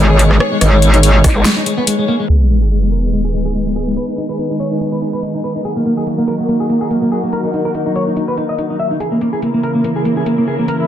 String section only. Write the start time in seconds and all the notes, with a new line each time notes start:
Already playing: D#3 G#3 B3 G#4 C#5
2.29 D#3 G#3 B3 G#4 B4
5.65 F#3 A#3 F#4 A#4
9.00 C#3 E3 A#3 E4 A#4